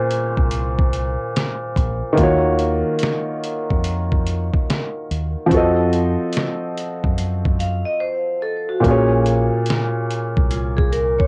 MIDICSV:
0, 0, Header, 1, 5, 480
1, 0, Start_track
1, 0, Tempo, 833333
1, 1253, Time_signature, 4, 2, 24, 8
1, 6493, End_track
2, 0, Start_track
2, 0, Title_t, "Vibraphone"
2, 0, Program_c, 0, 11
2, 4374, Note_on_c, 0, 77, 61
2, 4519, Note_off_c, 0, 77, 0
2, 4524, Note_on_c, 0, 75, 82
2, 4607, Note_off_c, 0, 75, 0
2, 4610, Note_on_c, 0, 72, 87
2, 4839, Note_off_c, 0, 72, 0
2, 4852, Note_on_c, 0, 69, 83
2, 4998, Note_off_c, 0, 69, 0
2, 5006, Note_on_c, 0, 66, 72
2, 5234, Note_off_c, 0, 66, 0
2, 6054, Note_on_c, 0, 65, 67
2, 6199, Note_off_c, 0, 65, 0
2, 6202, Note_on_c, 0, 68, 83
2, 6286, Note_off_c, 0, 68, 0
2, 6292, Note_on_c, 0, 70, 74
2, 6438, Note_off_c, 0, 70, 0
2, 6443, Note_on_c, 0, 73, 83
2, 6493, Note_off_c, 0, 73, 0
2, 6493, End_track
3, 0, Start_track
3, 0, Title_t, "Felt piano"
3, 0, Program_c, 1, 0
3, 0, Control_c, 1, 64, 127
3, 0, Note_on_c, 1, 46, 95
3, 0, Note_on_c, 1, 58, 79
3, 0, Note_on_c, 1, 61, 83
3, 0, Note_on_c, 1, 68, 73
3, 0, Note_on_c, 1, 72, 94
3, 1222, Note_off_c, 1, 46, 0
3, 1226, Note_on_c, 1, 51, 94
3, 1229, Note_off_c, 1, 58, 0
3, 1237, Note_off_c, 1, 61, 0
3, 1240, Note_on_c, 1, 58, 81
3, 1244, Note_off_c, 1, 68, 0
3, 1252, Note_off_c, 1, 72, 0
3, 1256, Note_on_c, 1, 65, 82
3, 1261, Control_c, 1, 64, 0
3, 1271, Note_on_c, 1, 66, 81
3, 1287, Note_on_c, 1, 73, 96
3, 1346, Control_c, 1, 64, 127
3, 3137, Note_off_c, 1, 51, 0
3, 3143, Note_off_c, 1, 58, 0
3, 3146, Note_on_c, 1, 53, 88
3, 3152, Note_off_c, 1, 65, 0
3, 3159, Note_off_c, 1, 66, 0
3, 3161, Note_on_c, 1, 60, 81
3, 3167, Note_off_c, 1, 73, 0
3, 3177, Note_on_c, 1, 66, 76
3, 3181, Control_c, 1, 64, 0
3, 3192, Note_on_c, 1, 69, 75
3, 3207, Note_on_c, 1, 75, 96
3, 3294, Control_c, 1, 64, 127
3, 5056, Note_off_c, 1, 53, 0
3, 5064, Note_off_c, 1, 60, 0
3, 5070, Note_on_c, 1, 46, 79
3, 5072, Note_off_c, 1, 66, 0
3, 5079, Note_off_c, 1, 69, 0
3, 5084, Note_on_c, 1, 58, 76
3, 5087, Note_off_c, 1, 75, 0
3, 5100, Note_on_c, 1, 61, 70
3, 5101, Control_c, 1, 64, 0
3, 5116, Note_on_c, 1, 68, 73
3, 5132, Note_on_c, 1, 73, 92
3, 5207, Control_c, 1, 64, 127
3, 6493, Note_off_c, 1, 46, 0
3, 6493, Note_off_c, 1, 58, 0
3, 6493, Note_off_c, 1, 61, 0
3, 6493, Note_off_c, 1, 68, 0
3, 6493, Note_off_c, 1, 73, 0
3, 6493, End_track
4, 0, Start_track
4, 0, Title_t, "Fingered electric bass"
4, 0, Program_c, 2, 33
4, 217, Note_on_c, 2, 36, 92
4, 669, Note_off_c, 2, 36, 0
4, 1019, Note_on_c, 2, 34, 96
4, 1156, Note_off_c, 2, 34, 0
4, 1257, Note_on_c, 2, 39, 109
4, 1625, Note_off_c, 2, 39, 0
4, 2138, Note_on_c, 2, 41, 92
4, 2589, Note_off_c, 2, 41, 0
4, 2942, Note_on_c, 2, 39, 89
4, 3078, Note_off_c, 2, 39, 0
4, 3176, Note_on_c, 2, 41, 101
4, 3545, Note_off_c, 2, 41, 0
4, 4058, Note_on_c, 2, 42, 85
4, 4509, Note_off_c, 2, 42, 0
4, 5097, Note_on_c, 2, 34, 100
4, 5465, Note_off_c, 2, 34, 0
4, 5977, Note_on_c, 2, 36, 93
4, 6429, Note_off_c, 2, 36, 0
4, 6493, End_track
5, 0, Start_track
5, 0, Title_t, "Drums"
5, 61, Note_on_c, 9, 42, 77
5, 119, Note_off_c, 9, 42, 0
5, 214, Note_on_c, 9, 36, 87
5, 272, Note_off_c, 9, 36, 0
5, 293, Note_on_c, 9, 42, 89
5, 351, Note_off_c, 9, 42, 0
5, 452, Note_on_c, 9, 36, 94
5, 510, Note_off_c, 9, 36, 0
5, 536, Note_on_c, 9, 42, 64
5, 593, Note_off_c, 9, 42, 0
5, 785, Note_on_c, 9, 42, 67
5, 787, Note_on_c, 9, 38, 110
5, 842, Note_off_c, 9, 42, 0
5, 845, Note_off_c, 9, 38, 0
5, 1015, Note_on_c, 9, 36, 92
5, 1022, Note_on_c, 9, 42, 62
5, 1073, Note_off_c, 9, 36, 0
5, 1079, Note_off_c, 9, 42, 0
5, 1253, Note_on_c, 9, 36, 105
5, 1254, Note_on_c, 9, 42, 82
5, 1311, Note_off_c, 9, 36, 0
5, 1311, Note_off_c, 9, 42, 0
5, 1491, Note_on_c, 9, 42, 62
5, 1549, Note_off_c, 9, 42, 0
5, 1721, Note_on_c, 9, 42, 79
5, 1746, Note_on_c, 9, 38, 109
5, 1779, Note_off_c, 9, 42, 0
5, 1803, Note_off_c, 9, 38, 0
5, 1979, Note_on_c, 9, 42, 79
5, 2037, Note_off_c, 9, 42, 0
5, 2133, Note_on_c, 9, 36, 82
5, 2191, Note_off_c, 9, 36, 0
5, 2212, Note_on_c, 9, 42, 96
5, 2269, Note_off_c, 9, 42, 0
5, 2372, Note_on_c, 9, 36, 93
5, 2430, Note_off_c, 9, 36, 0
5, 2457, Note_on_c, 9, 42, 70
5, 2514, Note_off_c, 9, 42, 0
5, 2612, Note_on_c, 9, 36, 90
5, 2670, Note_off_c, 9, 36, 0
5, 2705, Note_on_c, 9, 42, 60
5, 2708, Note_on_c, 9, 38, 116
5, 2763, Note_off_c, 9, 42, 0
5, 2765, Note_off_c, 9, 38, 0
5, 2944, Note_on_c, 9, 42, 60
5, 3001, Note_off_c, 9, 42, 0
5, 3173, Note_on_c, 9, 36, 97
5, 3175, Note_on_c, 9, 42, 79
5, 3231, Note_off_c, 9, 36, 0
5, 3233, Note_off_c, 9, 42, 0
5, 3414, Note_on_c, 9, 42, 62
5, 3472, Note_off_c, 9, 42, 0
5, 3644, Note_on_c, 9, 42, 88
5, 3668, Note_on_c, 9, 38, 108
5, 3701, Note_off_c, 9, 42, 0
5, 3726, Note_off_c, 9, 38, 0
5, 3902, Note_on_c, 9, 42, 66
5, 3960, Note_off_c, 9, 42, 0
5, 4054, Note_on_c, 9, 36, 94
5, 4111, Note_off_c, 9, 36, 0
5, 4135, Note_on_c, 9, 42, 89
5, 4193, Note_off_c, 9, 42, 0
5, 4292, Note_on_c, 9, 36, 88
5, 4350, Note_off_c, 9, 36, 0
5, 4378, Note_on_c, 9, 42, 69
5, 4436, Note_off_c, 9, 42, 0
5, 5093, Note_on_c, 9, 36, 100
5, 5096, Note_on_c, 9, 42, 74
5, 5151, Note_off_c, 9, 36, 0
5, 5153, Note_off_c, 9, 42, 0
5, 5334, Note_on_c, 9, 42, 65
5, 5391, Note_off_c, 9, 42, 0
5, 5564, Note_on_c, 9, 42, 80
5, 5588, Note_on_c, 9, 38, 111
5, 5621, Note_off_c, 9, 42, 0
5, 5646, Note_off_c, 9, 38, 0
5, 5821, Note_on_c, 9, 42, 68
5, 5878, Note_off_c, 9, 42, 0
5, 5973, Note_on_c, 9, 36, 96
5, 6030, Note_off_c, 9, 36, 0
5, 6052, Note_on_c, 9, 42, 90
5, 6110, Note_off_c, 9, 42, 0
5, 6210, Note_on_c, 9, 36, 91
5, 6268, Note_off_c, 9, 36, 0
5, 6294, Note_on_c, 9, 42, 62
5, 6351, Note_off_c, 9, 42, 0
5, 6451, Note_on_c, 9, 36, 94
5, 6493, Note_off_c, 9, 36, 0
5, 6493, End_track
0, 0, End_of_file